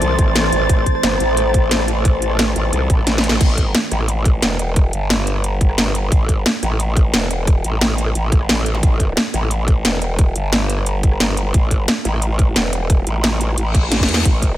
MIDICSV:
0, 0, Header, 1, 7, 480
1, 0, Start_track
1, 0, Key_signature, 0, "minor"
1, 0, Tempo, 338983
1, 984, Time_signature, 4, 2, 24, 8
1, 20644, End_track
2, 0, Start_track
2, 0, Title_t, "String section"
2, 0, Program_c, 0, 48
2, 0, Note_on_c, 0, 57, 83
2, 0, Note_on_c, 0, 69, 76
2, 0, Note_on_c, 0, 74, 86
2, 0, Note_on_c, 0, 93, 86
2, 4823, Note_off_c, 0, 57, 0
2, 4824, Note_off_c, 0, 74, 0
2, 4825, Note_off_c, 0, 69, 0
2, 4848, Note_off_c, 0, 93, 0
2, 20644, End_track
3, 0, Start_track
3, 0, Title_t, "Ambient pad"
3, 0, Program_c, 1, 92
3, 0, Note_on_c, 1, 52, 93
3, 0, Note_on_c, 1, 64, 78
3, 0, Note_on_c, 1, 69, 82
3, 0, Note_on_c, 1, 72, 97
3, 4768, Note_off_c, 1, 52, 0
3, 4768, Note_off_c, 1, 64, 0
3, 4768, Note_off_c, 1, 69, 0
3, 4791, Note_off_c, 1, 72, 0
3, 20184, Note_on_c, 1, 52, 89
3, 20644, Note_off_c, 1, 52, 0
3, 20644, End_track
4, 0, Start_track
4, 0, Title_t, "Wobble bass"
4, 0, Program_c, 2, 39
4, 24, Note_on_c, 2, 36, 95
4, 244, Note_off_c, 2, 36, 0
4, 263, Note_on_c, 2, 33, 100
4, 724, Note_off_c, 2, 33, 0
4, 744, Note_on_c, 2, 33, 100
4, 964, Note_off_c, 2, 33, 0
4, 983, Note_on_c, 2, 33, 99
4, 1204, Note_off_c, 2, 33, 0
4, 1464, Note_on_c, 2, 31, 97
4, 1685, Note_off_c, 2, 31, 0
4, 1703, Note_on_c, 2, 33, 101
4, 3604, Note_off_c, 2, 33, 0
4, 3625, Note_on_c, 2, 33, 100
4, 3845, Note_off_c, 2, 33, 0
4, 3864, Note_on_c, 2, 36, 100
4, 4085, Note_off_c, 2, 36, 0
4, 4104, Note_on_c, 2, 33, 102
4, 4805, Note_off_c, 2, 33, 0
4, 4824, Note_on_c, 2, 33, 97
4, 5285, Note_off_c, 2, 33, 0
4, 5545, Note_on_c, 2, 33, 97
4, 6245, Note_off_c, 2, 33, 0
4, 6265, Note_on_c, 2, 28, 100
4, 6965, Note_off_c, 2, 28, 0
4, 6984, Note_on_c, 2, 31, 99
4, 8165, Note_off_c, 2, 31, 0
4, 8183, Note_on_c, 2, 31, 103
4, 8644, Note_off_c, 2, 31, 0
4, 8663, Note_on_c, 2, 33, 98
4, 9124, Note_off_c, 2, 33, 0
4, 9383, Note_on_c, 2, 33, 98
4, 10084, Note_off_c, 2, 33, 0
4, 10104, Note_on_c, 2, 28, 104
4, 10805, Note_off_c, 2, 28, 0
4, 10823, Note_on_c, 2, 33, 99
4, 11524, Note_off_c, 2, 33, 0
4, 11544, Note_on_c, 2, 33, 92
4, 12485, Note_off_c, 2, 33, 0
4, 12503, Note_on_c, 2, 33, 93
4, 12964, Note_off_c, 2, 33, 0
4, 13224, Note_on_c, 2, 33, 96
4, 13925, Note_off_c, 2, 33, 0
4, 13943, Note_on_c, 2, 28, 98
4, 14644, Note_off_c, 2, 28, 0
4, 14664, Note_on_c, 2, 31, 100
4, 15845, Note_off_c, 2, 31, 0
4, 15864, Note_on_c, 2, 31, 100
4, 16325, Note_off_c, 2, 31, 0
4, 16344, Note_on_c, 2, 33, 101
4, 16805, Note_off_c, 2, 33, 0
4, 17064, Note_on_c, 2, 33, 99
4, 17765, Note_off_c, 2, 33, 0
4, 17784, Note_on_c, 2, 28, 101
4, 18484, Note_off_c, 2, 28, 0
4, 18504, Note_on_c, 2, 33, 98
4, 19205, Note_off_c, 2, 33, 0
4, 19224, Note_on_c, 2, 33, 92
4, 19925, Note_off_c, 2, 33, 0
4, 19944, Note_on_c, 2, 40, 96
4, 20165, Note_off_c, 2, 40, 0
4, 20184, Note_on_c, 2, 33, 96
4, 20644, Note_off_c, 2, 33, 0
4, 20644, End_track
5, 0, Start_track
5, 0, Title_t, "Reverse cymbal"
5, 0, Program_c, 3, 119
5, 19223, Note_on_c, 3, 60, 62
5, 20183, Note_off_c, 3, 60, 0
5, 20644, End_track
6, 0, Start_track
6, 0, Title_t, "Zap"
6, 0, Program_c, 4, 103
6, 12383, Note_on_c, 4, 60, 64
6, 12503, Note_off_c, 4, 60, 0
6, 20644, End_track
7, 0, Start_track
7, 0, Title_t, "Drums"
7, 23, Note_on_c, 9, 42, 94
7, 165, Note_off_c, 9, 42, 0
7, 263, Note_on_c, 9, 36, 102
7, 264, Note_on_c, 9, 42, 70
7, 404, Note_off_c, 9, 36, 0
7, 405, Note_off_c, 9, 42, 0
7, 503, Note_on_c, 9, 38, 118
7, 503, Note_on_c, 9, 42, 88
7, 623, Note_on_c, 9, 37, 52
7, 645, Note_off_c, 9, 38, 0
7, 645, Note_off_c, 9, 42, 0
7, 744, Note_on_c, 9, 42, 65
7, 764, Note_off_c, 9, 37, 0
7, 864, Note_on_c, 9, 37, 31
7, 885, Note_off_c, 9, 42, 0
7, 983, Note_on_c, 9, 36, 116
7, 984, Note_on_c, 9, 42, 94
7, 1005, Note_off_c, 9, 37, 0
7, 1124, Note_off_c, 9, 36, 0
7, 1125, Note_off_c, 9, 42, 0
7, 1223, Note_on_c, 9, 36, 55
7, 1224, Note_on_c, 9, 42, 71
7, 1345, Note_on_c, 9, 37, 35
7, 1364, Note_off_c, 9, 36, 0
7, 1366, Note_off_c, 9, 42, 0
7, 1464, Note_on_c, 9, 38, 115
7, 1464, Note_on_c, 9, 42, 98
7, 1486, Note_off_c, 9, 37, 0
7, 1606, Note_off_c, 9, 38, 0
7, 1606, Note_off_c, 9, 42, 0
7, 1704, Note_on_c, 9, 42, 71
7, 1845, Note_off_c, 9, 42, 0
7, 1943, Note_on_c, 9, 42, 92
7, 2085, Note_off_c, 9, 42, 0
7, 2183, Note_on_c, 9, 36, 98
7, 2184, Note_on_c, 9, 42, 69
7, 2325, Note_off_c, 9, 36, 0
7, 2325, Note_off_c, 9, 42, 0
7, 2423, Note_on_c, 9, 38, 117
7, 2423, Note_on_c, 9, 42, 95
7, 2544, Note_on_c, 9, 37, 54
7, 2565, Note_off_c, 9, 38, 0
7, 2565, Note_off_c, 9, 42, 0
7, 2664, Note_on_c, 9, 42, 68
7, 2685, Note_off_c, 9, 37, 0
7, 2806, Note_off_c, 9, 42, 0
7, 2904, Note_on_c, 9, 36, 116
7, 2904, Note_on_c, 9, 42, 97
7, 3045, Note_off_c, 9, 36, 0
7, 3045, Note_off_c, 9, 42, 0
7, 3144, Note_on_c, 9, 42, 74
7, 3265, Note_on_c, 9, 37, 35
7, 3286, Note_off_c, 9, 42, 0
7, 3384, Note_on_c, 9, 38, 119
7, 3384, Note_on_c, 9, 42, 102
7, 3407, Note_off_c, 9, 37, 0
7, 3525, Note_off_c, 9, 38, 0
7, 3525, Note_off_c, 9, 42, 0
7, 3624, Note_on_c, 9, 42, 69
7, 3766, Note_off_c, 9, 42, 0
7, 3864, Note_on_c, 9, 42, 97
7, 4005, Note_off_c, 9, 42, 0
7, 4104, Note_on_c, 9, 36, 107
7, 4104, Note_on_c, 9, 42, 73
7, 4246, Note_off_c, 9, 36, 0
7, 4246, Note_off_c, 9, 42, 0
7, 4344, Note_on_c, 9, 38, 68
7, 4344, Note_on_c, 9, 42, 102
7, 4486, Note_off_c, 9, 38, 0
7, 4486, Note_off_c, 9, 42, 0
7, 4504, Note_on_c, 9, 38, 82
7, 4584, Note_on_c, 9, 42, 68
7, 4646, Note_off_c, 9, 38, 0
7, 4663, Note_on_c, 9, 38, 94
7, 4726, Note_off_c, 9, 42, 0
7, 4805, Note_off_c, 9, 38, 0
7, 4824, Note_on_c, 9, 36, 122
7, 4824, Note_on_c, 9, 42, 100
7, 4824, Note_on_c, 9, 49, 106
7, 4966, Note_off_c, 9, 36, 0
7, 4966, Note_off_c, 9, 42, 0
7, 4966, Note_off_c, 9, 49, 0
7, 5064, Note_on_c, 9, 36, 60
7, 5065, Note_on_c, 9, 42, 75
7, 5206, Note_off_c, 9, 36, 0
7, 5207, Note_off_c, 9, 42, 0
7, 5304, Note_on_c, 9, 38, 123
7, 5304, Note_on_c, 9, 42, 97
7, 5446, Note_off_c, 9, 38, 0
7, 5446, Note_off_c, 9, 42, 0
7, 5544, Note_on_c, 9, 37, 35
7, 5544, Note_on_c, 9, 42, 72
7, 5664, Note_off_c, 9, 37, 0
7, 5664, Note_on_c, 9, 37, 38
7, 5686, Note_off_c, 9, 42, 0
7, 5784, Note_on_c, 9, 42, 94
7, 5805, Note_off_c, 9, 37, 0
7, 5925, Note_off_c, 9, 42, 0
7, 6024, Note_on_c, 9, 36, 101
7, 6024, Note_on_c, 9, 42, 74
7, 6166, Note_off_c, 9, 36, 0
7, 6166, Note_off_c, 9, 42, 0
7, 6265, Note_on_c, 9, 38, 114
7, 6265, Note_on_c, 9, 42, 96
7, 6406, Note_off_c, 9, 38, 0
7, 6406, Note_off_c, 9, 42, 0
7, 6505, Note_on_c, 9, 42, 69
7, 6646, Note_off_c, 9, 42, 0
7, 6744, Note_on_c, 9, 36, 126
7, 6744, Note_on_c, 9, 42, 90
7, 6885, Note_off_c, 9, 36, 0
7, 6886, Note_off_c, 9, 42, 0
7, 6983, Note_on_c, 9, 42, 70
7, 7125, Note_off_c, 9, 42, 0
7, 7223, Note_on_c, 9, 38, 126
7, 7223, Note_on_c, 9, 42, 96
7, 7365, Note_off_c, 9, 38, 0
7, 7365, Note_off_c, 9, 42, 0
7, 7463, Note_on_c, 9, 42, 68
7, 7584, Note_on_c, 9, 37, 37
7, 7605, Note_off_c, 9, 42, 0
7, 7703, Note_on_c, 9, 42, 96
7, 7725, Note_off_c, 9, 37, 0
7, 7845, Note_off_c, 9, 42, 0
7, 7943, Note_on_c, 9, 36, 108
7, 7944, Note_on_c, 9, 42, 67
7, 8064, Note_on_c, 9, 37, 35
7, 8085, Note_off_c, 9, 36, 0
7, 8085, Note_off_c, 9, 42, 0
7, 8184, Note_on_c, 9, 38, 123
7, 8184, Note_on_c, 9, 42, 94
7, 8205, Note_off_c, 9, 37, 0
7, 8326, Note_off_c, 9, 38, 0
7, 8326, Note_off_c, 9, 42, 0
7, 8424, Note_on_c, 9, 42, 67
7, 8566, Note_off_c, 9, 42, 0
7, 8663, Note_on_c, 9, 36, 127
7, 8664, Note_on_c, 9, 42, 92
7, 8805, Note_off_c, 9, 36, 0
7, 8806, Note_off_c, 9, 42, 0
7, 8903, Note_on_c, 9, 36, 61
7, 8905, Note_on_c, 9, 42, 68
7, 9045, Note_off_c, 9, 36, 0
7, 9046, Note_off_c, 9, 42, 0
7, 9145, Note_on_c, 9, 38, 124
7, 9145, Note_on_c, 9, 42, 92
7, 9287, Note_off_c, 9, 38, 0
7, 9287, Note_off_c, 9, 42, 0
7, 9385, Note_on_c, 9, 37, 37
7, 9385, Note_on_c, 9, 42, 67
7, 9505, Note_off_c, 9, 37, 0
7, 9505, Note_on_c, 9, 37, 35
7, 9527, Note_off_c, 9, 42, 0
7, 9625, Note_on_c, 9, 42, 87
7, 9647, Note_off_c, 9, 37, 0
7, 9766, Note_off_c, 9, 42, 0
7, 9863, Note_on_c, 9, 36, 116
7, 9865, Note_on_c, 9, 42, 67
7, 10005, Note_off_c, 9, 36, 0
7, 10006, Note_off_c, 9, 42, 0
7, 10104, Note_on_c, 9, 38, 124
7, 10104, Note_on_c, 9, 42, 91
7, 10246, Note_off_c, 9, 38, 0
7, 10246, Note_off_c, 9, 42, 0
7, 10345, Note_on_c, 9, 42, 64
7, 10486, Note_off_c, 9, 42, 0
7, 10583, Note_on_c, 9, 36, 125
7, 10584, Note_on_c, 9, 42, 89
7, 10724, Note_off_c, 9, 36, 0
7, 10725, Note_off_c, 9, 42, 0
7, 10824, Note_on_c, 9, 42, 65
7, 10966, Note_off_c, 9, 42, 0
7, 11064, Note_on_c, 9, 38, 123
7, 11064, Note_on_c, 9, 42, 87
7, 11206, Note_off_c, 9, 38, 0
7, 11206, Note_off_c, 9, 42, 0
7, 11304, Note_on_c, 9, 42, 66
7, 11424, Note_on_c, 9, 37, 34
7, 11446, Note_off_c, 9, 42, 0
7, 11544, Note_on_c, 9, 42, 85
7, 11566, Note_off_c, 9, 37, 0
7, 11686, Note_off_c, 9, 42, 0
7, 11783, Note_on_c, 9, 36, 109
7, 11784, Note_on_c, 9, 42, 65
7, 11905, Note_on_c, 9, 37, 32
7, 11925, Note_off_c, 9, 36, 0
7, 11926, Note_off_c, 9, 42, 0
7, 12025, Note_on_c, 9, 38, 127
7, 12025, Note_on_c, 9, 42, 87
7, 12046, Note_off_c, 9, 37, 0
7, 12166, Note_off_c, 9, 38, 0
7, 12166, Note_off_c, 9, 42, 0
7, 12265, Note_on_c, 9, 42, 61
7, 12406, Note_off_c, 9, 42, 0
7, 12503, Note_on_c, 9, 36, 118
7, 12505, Note_on_c, 9, 42, 89
7, 12645, Note_off_c, 9, 36, 0
7, 12646, Note_off_c, 9, 42, 0
7, 12743, Note_on_c, 9, 36, 59
7, 12744, Note_on_c, 9, 42, 64
7, 12885, Note_off_c, 9, 36, 0
7, 12886, Note_off_c, 9, 42, 0
7, 12984, Note_on_c, 9, 38, 121
7, 12984, Note_on_c, 9, 42, 88
7, 13126, Note_off_c, 9, 38, 0
7, 13126, Note_off_c, 9, 42, 0
7, 13224, Note_on_c, 9, 37, 32
7, 13224, Note_on_c, 9, 42, 66
7, 13344, Note_off_c, 9, 37, 0
7, 13344, Note_on_c, 9, 37, 35
7, 13366, Note_off_c, 9, 42, 0
7, 13464, Note_on_c, 9, 42, 89
7, 13486, Note_off_c, 9, 37, 0
7, 13606, Note_off_c, 9, 42, 0
7, 13703, Note_on_c, 9, 36, 103
7, 13704, Note_on_c, 9, 42, 64
7, 13845, Note_off_c, 9, 36, 0
7, 13846, Note_off_c, 9, 42, 0
7, 13945, Note_on_c, 9, 38, 119
7, 13945, Note_on_c, 9, 42, 90
7, 14087, Note_off_c, 9, 38, 0
7, 14087, Note_off_c, 9, 42, 0
7, 14184, Note_on_c, 9, 42, 63
7, 14326, Note_off_c, 9, 42, 0
7, 14424, Note_on_c, 9, 36, 117
7, 14424, Note_on_c, 9, 42, 90
7, 14565, Note_off_c, 9, 36, 0
7, 14566, Note_off_c, 9, 42, 0
7, 14664, Note_on_c, 9, 42, 71
7, 14806, Note_off_c, 9, 42, 0
7, 14904, Note_on_c, 9, 38, 115
7, 14904, Note_on_c, 9, 42, 91
7, 15045, Note_off_c, 9, 38, 0
7, 15045, Note_off_c, 9, 42, 0
7, 15145, Note_on_c, 9, 42, 65
7, 15264, Note_on_c, 9, 37, 35
7, 15286, Note_off_c, 9, 42, 0
7, 15384, Note_on_c, 9, 42, 97
7, 15406, Note_off_c, 9, 37, 0
7, 15525, Note_off_c, 9, 42, 0
7, 15623, Note_on_c, 9, 36, 107
7, 15624, Note_on_c, 9, 42, 68
7, 15744, Note_on_c, 9, 37, 32
7, 15765, Note_off_c, 9, 36, 0
7, 15766, Note_off_c, 9, 42, 0
7, 15863, Note_on_c, 9, 38, 118
7, 15863, Note_on_c, 9, 42, 90
7, 15885, Note_off_c, 9, 37, 0
7, 16005, Note_off_c, 9, 38, 0
7, 16005, Note_off_c, 9, 42, 0
7, 16104, Note_on_c, 9, 42, 68
7, 16246, Note_off_c, 9, 42, 0
7, 16343, Note_on_c, 9, 36, 116
7, 16343, Note_on_c, 9, 42, 98
7, 16485, Note_off_c, 9, 36, 0
7, 16485, Note_off_c, 9, 42, 0
7, 16583, Note_on_c, 9, 36, 58
7, 16584, Note_on_c, 9, 42, 71
7, 16725, Note_off_c, 9, 36, 0
7, 16725, Note_off_c, 9, 42, 0
7, 16823, Note_on_c, 9, 38, 110
7, 16823, Note_on_c, 9, 42, 96
7, 16965, Note_off_c, 9, 38, 0
7, 16965, Note_off_c, 9, 42, 0
7, 17064, Note_on_c, 9, 37, 33
7, 17064, Note_on_c, 9, 42, 72
7, 17184, Note_off_c, 9, 37, 0
7, 17184, Note_on_c, 9, 37, 36
7, 17206, Note_off_c, 9, 42, 0
7, 17304, Note_on_c, 9, 42, 92
7, 17325, Note_off_c, 9, 37, 0
7, 17446, Note_off_c, 9, 42, 0
7, 17543, Note_on_c, 9, 36, 98
7, 17544, Note_on_c, 9, 42, 69
7, 17685, Note_off_c, 9, 36, 0
7, 17686, Note_off_c, 9, 42, 0
7, 17784, Note_on_c, 9, 38, 114
7, 17784, Note_on_c, 9, 42, 98
7, 17925, Note_off_c, 9, 38, 0
7, 17925, Note_off_c, 9, 42, 0
7, 18024, Note_on_c, 9, 42, 67
7, 18166, Note_off_c, 9, 42, 0
7, 18263, Note_on_c, 9, 36, 115
7, 18265, Note_on_c, 9, 42, 100
7, 18405, Note_off_c, 9, 36, 0
7, 18406, Note_off_c, 9, 42, 0
7, 18504, Note_on_c, 9, 42, 74
7, 18645, Note_off_c, 9, 42, 0
7, 18744, Note_on_c, 9, 38, 114
7, 18744, Note_on_c, 9, 42, 97
7, 18886, Note_off_c, 9, 38, 0
7, 18886, Note_off_c, 9, 42, 0
7, 18984, Note_on_c, 9, 42, 73
7, 19105, Note_on_c, 9, 37, 37
7, 19126, Note_off_c, 9, 42, 0
7, 19225, Note_on_c, 9, 42, 95
7, 19246, Note_off_c, 9, 37, 0
7, 19366, Note_off_c, 9, 42, 0
7, 19463, Note_on_c, 9, 36, 107
7, 19465, Note_on_c, 9, 42, 71
7, 19585, Note_on_c, 9, 37, 34
7, 19605, Note_off_c, 9, 36, 0
7, 19606, Note_off_c, 9, 42, 0
7, 19705, Note_on_c, 9, 38, 67
7, 19705, Note_on_c, 9, 42, 99
7, 19726, Note_off_c, 9, 37, 0
7, 19823, Note_on_c, 9, 36, 59
7, 19846, Note_off_c, 9, 38, 0
7, 19846, Note_off_c, 9, 42, 0
7, 19865, Note_on_c, 9, 38, 83
7, 19945, Note_on_c, 9, 42, 68
7, 19965, Note_off_c, 9, 36, 0
7, 20006, Note_off_c, 9, 38, 0
7, 20025, Note_on_c, 9, 38, 95
7, 20087, Note_off_c, 9, 42, 0
7, 20166, Note_off_c, 9, 38, 0
7, 20183, Note_on_c, 9, 36, 121
7, 20184, Note_on_c, 9, 42, 96
7, 20325, Note_off_c, 9, 36, 0
7, 20326, Note_off_c, 9, 42, 0
7, 20423, Note_on_c, 9, 36, 59
7, 20425, Note_on_c, 9, 42, 70
7, 20565, Note_off_c, 9, 36, 0
7, 20567, Note_off_c, 9, 42, 0
7, 20644, End_track
0, 0, End_of_file